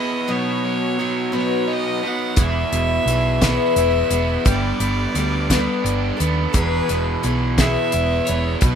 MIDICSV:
0, 0, Header, 1, 6, 480
1, 0, Start_track
1, 0, Tempo, 695249
1, 196, Time_signature, 6, 3, 24, 8
1, 6042, End_track
2, 0, Start_track
2, 0, Title_t, "Fiddle"
2, 0, Program_c, 0, 110
2, 0, Note_on_c, 0, 75, 94
2, 212, Note_on_c, 0, 73, 101
2, 223, Note_off_c, 0, 75, 0
2, 924, Note_off_c, 0, 73, 0
2, 946, Note_on_c, 0, 73, 90
2, 1191, Note_on_c, 0, 75, 102
2, 1201, Note_off_c, 0, 73, 0
2, 1425, Note_on_c, 0, 78, 89
2, 1435, Note_off_c, 0, 75, 0
2, 1675, Note_on_c, 0, 76, 113
2, 1685, Note_off_c, 0, 78, 0
2, 2375, Note_off_c, 0, 76, 0
2, 2397, Note_on_c, 0, 76, 105
2, 3069, Note_off_c, 0, 76, 0
2, 3111, Note_on_c, 0, 74, 93
2, 4267, Note_off_c, 0, 74, 0
2, 4479, Note_on_c, 0, 69, 73
2, 4520, Note_on_c, 0, 71, 104
2, 4530, Note_off_c, 0, 69, 0
2, 4999, Note_off_c, 0, 71, 0
2, 5233, Note_on_c, 0, 76, 103
2, 5698, Note_on_c, 0, 73, 87
2, 5708, Note_off_c, 0, 76, 0
2, 5929, Note_off_c, 0, 73, 0
2, 5933, Note_on_c, 0, 71, 84
2, 6042, Note_off_c, 0, 71, 0
2, 6042, End_track
3, 0, Start_track
3, 0, Title_t, "Overdriven electric guitar"
3, 0, Program_c, 1, 29
3, 0, Note_on_c, 1, 47, 61
3, 0, Note_on_c, 1, 52, 68
3, 0, Note_on_c, 1, 64, 69
3, 196, Note_off_c, 1, 47, 0
3, 199, Note_off_c, 1, 64, 0
3, 201, Note_off_c, 1, 52, 0
3, 446, Note_on_c, 1, 54, 61
3, 675, Note_off_c, 1, 54, 0
3, 1156, Note_on_c, 1, 63, 68
3, 1636, Note_off_c, 1, 63, 0
3, 1885, Note_on_c, 1, 47, 62
3, 2611, Note_on_c, 1, 64, 70
3, 3081, Note_off_c, 1, 47, 0
3, 3083, Note_off_c, 1, 64, 0
3, 3315, Note_on_c, 1, 59, 60
3, 3793, Note_off_c, 1, 59, 0
3, 4032, Note_on_c, 1, 62, 70
3, 4515, Note_off_c, 1, 62, 0
3, 4763, Note_on_c, 1, 47, 66
3, 5477, Note_on_c, 1, 64, 72
3, 5946, Note_off_c, 1, 47, 0
3, 5959, Note_off_c, 1, 64, 0
3, 6042, End_track
4, 0, Start_track
4, 0, Title_t, "Twelve-string acoustic guitar"
4, 0, Program_c, 2, 25
4, 0, Note_on_c, 2, 52, 36
4, 0, Note_on_c, 2, 59, 47
4, 0, Note_on_c, 2, 64, 47
4, 0, Note_on_c, 2, 68, 47
4, 188, Note_off_c, 2, 52, 0
4, 190, Note_off_c, 2, 59, 0
4, 190, Note_off_c, 2, 68, 0
4, 191, Note_on_c, 2, 54, 73
4, 193, Note_on_c, 2, 47, 67
4, 194, Note_off_c, 2, 64, 0
4, 197, Note_on_c, 2, 63, 68
4, 197, Note_on_c, 2, 66, 79
4, 198, Note_on_c, 2, 59, 77
4, 673, Note_off_c, 2, 54, 0
4, 674, Note_off_c, 2, 47, 0
4, 676, Note_off_c, 2, 63, 0
4, 676, Note_off_c, 2, 66, 0
4, 683, Note_on_c, 2, 54, 60
4, 685, Note_off_c, 2, 59, 0
4, 688, Note_on_c, 2, 59, 62
4, 694, Note_on_c, 2, 63, 69
4, 699, Note_on_c, 2, 66, 63
4, 903, Note_off_c, 2, 66, 0
4, 910, Note_off_c, 2, 59, 0
4, 910, Note_off_c, 2, 63, 0
4, 911, Note_off_c, 2, 54, 0
4, 911, Note_on_c, 2, 66, 73
4, 918, Note_on_c, 2, 59, 70
4, 918, Note_on_c, 2, 63, 71
4, 919, Note_on_c, 2, 54, 57
4, 929, Note_on_c, 2, 47, 57
4, 1393, Note_off_c, 2, 66, 0
4, 1397, Note_off_c, 2, 54, 0
4, 1397, Note_off_c, 2, 63, 0
4, 1402, Note_off_c, 2, 47, 0
4, 1402, Note_on_c, 2, 66, 49
4, 1416, Note_off_c, 2, 59, 0
4, 1417, Note_on_c, 2, 63, 41
4, 1419, Note_on_c, 2, 59, 40
4, 1632, Note_off_c, 2, 59, 0
4, 1633, Note_on_c, 2, 40, 66
4, 1636, Note_on_c, 2, 47, 75
4, 1639, Note_off_c, 2, 66, 0
4, 1639, Note_on_c, 2, 52, 68
4, 1640, Note_on_c, 2, 59, 82
4, 1644, Note_off_c, 2, 63, 0
4, 1645, Note_on_c, 2, 68, 70
4, 1647, Note_on_c, 2, 64, 73
4, 2114, Note_off_c, 2, 40, 0
4, 2115, Note_off_c, 2, 52, 0
4, 2116, Note_off_c, 2, 47, 0
4, 2120, Note_off_c, 2, 68, 0
4, 2121, Note_off_c, 2, 64, 0
4, 2123, Note_on_c, 2, 52, 55
4, 2128, Note_off_c, 2, 59, 0
4, 2129, Note_on_c, 2, 64, 64
4, 2131, Note_on_c, 2, 59, 62
4, 2139, Note_on_c, 2, 68, 78
4, 2355, Note_off_c, 2, 68, 0
4, 2359, Note_off_c, 2, 52, 0
4, 2359, Note_off_c, 2, 64, 0
4, 2362, Note_off_c, 2, 59, 0
4, 2363, Note_on_c, 2, 68, 70
4, 2368, Note_on_c, 2, 64, 72
4, 2370, Note_on_c, 2, 52, 63
4, 2370, Note_on_c, 2, 59, 67
4, 2378, Note_on_c, 2, 40, 59
4, 2379, Note_on_c, 2, 47, 61
4, 2835, Note_off_c, 2, 68, 0
4, 2842, Note_off_c, 2, 64, 0
4, 2843, Note_off_c, 2, 52, 0
4, 2843, Note_on_c, 2, 68, 46
4, 2847, Note_off_c, 2, 40, 0
4, 2847, Note_off_c, 2, 47, 0
4, 2854, Note_on_c, 2, 64, 40
4, 2856, Note_off_c, 2, 59, 0
4, 2859, Note_on_c, 2, 59, 44
4, 2863, Note_on_c, 2, 52, 39
4, 3067, Note_off_c, 2, 59, 0
4, 3068, Note_off_c, 2, 52, 0
4, 3071, Note_on_c, 2, 55, 72
4, 3075, Note_on_c, 2, 59, 74
4, 3078, Note_off_c, 2, 64, 0
4, 3080, Note_off_c, 2, 68, 0
4, 3081, Note_on_c, 2, 62, 74
4, 3089, Note_on_c, 2, 69, 83
4, 3552, Note_off_c, 2, 55, 0
4, 3559, Note_off_c, 2, 62, 0
4, 3560, Note_on_c, 2, 55, 60
4, 3563, Note_off_c, 2, 69, 0
4, 3566, Note_off_c, 2, 59, 0
4, 3569, Note_on_c, 2, 59, 65
4, 3574, Note_on_c, 2, 62, 70
4, 3581, Note_on_c, 2, 69, 73
4, 3787, Note_off_c, 2, 69, 0
4, 3796, Note_off_c, 2, 62, 0
4, 3796, Note_on_c, 2, 69, 79
4, 3797, Note_off_c, 2, 59, 0
4, 3798, Note_off_c, 2, 55, 0
4, 3804, Note_on_c, 2, 62, 87
4, 3805, Note_on_c, 2, 55, 64
4, 3805, Note_on_c, 2, 59, 76
4, 4250, Note_off_c, 2, 69, 0
4, 4258, Note_on_c, 2, 69, 56
4, 4259, Note_off_c, 2, 62, 0
4, 4267, Note_on_c, 2, 62, 53
4, 4275, Note_off_c, 2, 59, 0
4, 4278, Note_on_c, 2, 59, 50
4, 4281, Note_off_c, 2, 55, 0
4, 4503, Note_off_c, 2, 59, 0
4, 4507, Note_on_c, 2, 40, 66
4, 4508, Note_off_c, 2, 69, 0
4, 4511, Note_off_c, 2, 62, 0
4, 4512, Note_on_c, 2, 47, 67
4, 4512, Note_on_c, 2, 59, 69
4, 4513, Note_on_c, 2, 52, 74
4, 4514, Note_on_c, 2, 64, 70
4, 4521, Note_on_c, 2, 68, 91
4, 4983, Note_off_c, 2, 52, 0
4, 4991, Note_off_c, 2, 59, 0
4, 4991, Note_on_c, 2, 52, 66
4, 4992, Note_off_c, 2, 40, 0
4, 4994, Note_off_c, 2, 64, 0
4, 4994, Note_on_c, 2, 59, 59
4, 4995, Note_off_c, 2, 47, 0
4, 4999, Note_off_c, 2, 68, 0
4, 5003, Note_on_c, 2, 64, 71
4, 5012, Note_on_c, 2, 68, 66
4, 5226, Note_off_c, 2, 68, 0
4, 5228, Note_off_c, 2, 64, 0
4, 5231, Note_off_c, 2, 52, 0
4, 5232, Note_off_c, 2, 59, 0
4, 5234, Note_on_c, 2, 68, 73
4, 5237, Note_on_c, 2, 64, 67
4, 5239, Note_on_c, 2, 52, 65
4, 5240, Note_on_c, 2, 59, 66
4, 5244, Note_on_c, 2, 40, 60
4, 5245, Note_on_c, 2, 47, 65
4, 5710, Note_off_c, 2, 68, 0
4, 5714, Note_off_c, 2, 64, 0
4, 5718, Note_on_c, 2, 68, 50
4, 5719, Note_off_c, 2, 52, 0
4, 5721, Note_off_c, 2, 40, 0
4, 5722, Note_off_c, 2, 47, 0
4, 5722, Note_on_c, 2, 64, 47
4, 5727, Note_off_c, 2, 59, 0
4, 5730, Note_on_c, 2, 59, 39
4, 5735, Note_on_c, 2, 52, 43
4, 5951, Note_on_c, 2, 47, 74
4, 5953, Note_off_c, 2, 52, 0
4, 5956, Note_on_c, 2, 54, 70
4, 5957, Note_off_c, 2, 59, 0
4, 5959, Note_off_c, 2, 68, 0
4, 5961, Note_off_c, 2, 64, 0
4, 5965, Note_on_c, 2, 59, 76
4, 5965, Note_on_c, 2, 66, 74
4, 5967, Note_on_c, 2, 63, 81
4, 6042, Note_off_c, 2, 47, 0
4, 6042, Note_off_c, 2, 54, 0
4, 6042, Note_off_c, 2, 59, 0
4, 6042, Note_off_c, 2, 63, 0
4, 6042, Note_off_c, 2, 66, 0
4, 6042, End_track
5, 0, Start_track
5, 0, Title_t, "Fingered electric bass"
5, 0, Program_c, 3, 33
5, 1637, Note_on_c, 3, 28, 87
5, 1814, Note_off_c, 3, 28, 0
5, 1880, Note_on_c, 3, 28, 82
5, 2056, Note_off_c, 3, 28, 0
5, 2111, Note_on_c, 3, 35, 86
5, 2467, Note_off_c, 3, 35, 0
5, 2597, Note_on_c, 3, 28, 86
5, 2774, Note_off_c, 3, 28, 0
5, 2834, Note_on_c, 3, 28, 80
5, 3012, Note_off_c, 3, 28, 0
5, 3077, Note_on_c, 3, 31, 90
5, 3254, Note_off_c, 3, 31, 0
5, 3312, Note_on_c, 3, 31, 81
5, 3491, Note_off_c, 3, 31, 0
5, 3553, Note_on_c, 3, 38, 83
5, 3909, Note_off_c, 3, 38, 0
5, 4035, Note_on_c, 3, 31, 72
5, 4213, Note_off_c, 3, 31, 0
5, 4283, Note_on_c, 3, 39, 90
5, 4458, Note_off_c, 3, 39, 0
5, 4518, Note_on_c, 3, 28, 80
5, 4695, Note_off_c, 3, 28, 0
5, 4764, Note_on_c, 3, 28, 74
5, 4939, Note_off_c, 3, 28, 0
5, 5000, Note_on_c, 3, 35, 83
5, 5354, Note_off_c, 3, 35, 0
5, 5481, Note_on_c, 3, 28, 79
5, 5657, Note_off_c, 3, 28, 0
5, 5725, Note_on_c, 3, 28, 86
5, 5900, Note_off_c, 3, 28, 0
5, 5951, Note_on_c, 3, 35, 81
5, 6042, Note_off_c, 3, 35, 0
5, 6042, End_track
6, 0, Start_track
6, 0, Title_t, "Drums"
6, 1633, Note_on_c, 9, 42, 77
6, 1637, Note_on_c, 9, 36, 106
6, 1702, Note_off_c, 9, 42, 0
6, 1706, Note_off_c, 9, 36, 0
6, 1882, Note_on_c, 9, 42, 55
6, 1951, Note_off_c, 9, 42, 0
6, 2124, Note_on_c, 9, 42, 57
6, 2193, Note_off_c, 9, 42, 0
6, 2358, Note_on_c, 9, 42, 67
6, 2359, Note_on_c, 9, 36, 69
6, 2362, Note_on_c, 9, 38, 96
6, 2427, Note_off_c, 9, 42, 0
6, 2428, Note_off_c, 9, 36, 0
6, 2431, Note_off_c, 9, 38, 0
6, 2598, Note_on_c, 9, 42, 61
6, 2667, Note_off_c, 9, 42, 0
6, 2835, Note_on_c, 9, 42, 64
6, 2904, Note_off_c, 9, 42, 0
6, 3076, Note_on_c, 9, 42, 74
6, 3078, Note_on_c, 9, 36, 99
6, 3145, Note_off_c, 9, 42, 0
6, 3147, Note_off_c, 9, 36, 0
6, 3316, Note_on_c, 9, 42, 60
6, 3385, Note_off_c, 9, 42, 0
6, 3557, Note_on_c, 9, 42, 60
6, 3626, Note_off_c, 9, 42, 0
6, 3798, Note_on_c, 9, 36, 66
6, 3800, Note_on_c, 9, 42, 88
6, 3804, Note_on_c, 9, 38, 106
6, 3867, Note_off_c, 9, 36, 0
6, 3869, Note_off_c, 9, 42, 0
6, 3873, Note_off_c, 9, 38, 0
6, 4044, Note_on_c, 9, 42, 65
6, 4113, Note_off_c, 9, 42, 0
6, 4282, Note_on_c, 9, 42, 63
6, 4351, Note_off_c, 9, 42, 0
6, 4515, Note_on_c, 9, 42, 73
6, 4517, Note_on_c, 9, 36, 99
6, 4584, Note_off_c, 9, 42, 0
6, 4586, Note_off_c, 9, 36, 0
6, 4758, Note_on_c, 9, 42, 61
6, 4827, Note_off_c, 9, 42, 0
6, 4995, Note_on_c, 9, 42, 53
6, 5064, Note_off_c, 9, 42, 0
6, 5232, Note_on_c, 9, 36, 69
6, 5232, Note_on_c, 9, 42, 73
6, 5236, Note_on_c, 9, 38, 91
6, 5301, Note_off_c, 9, 36, 0
6, 5301, Note_off_c, 9, 42, 0
6, 5305, Note_off_c, 9, 38, 0
6, 5469, Note_on_c, 9, 42, 62
6, 5538, Note_off_c, 9, 42, 0
6, 5708, Note_on_c, 9, 42, 64
6, 5777, Note_off_c, 9, 42, 0
6, 5943, Note_on_c, 9, 42, 75
6, 5951, Note_on_c, 9, 36, 109
6, 6012, Note_off_c, 9, 42, 0
6, 6020, Note_off_c, 9, 36, 0
6, 6042, End_track
0, 0, End_of_file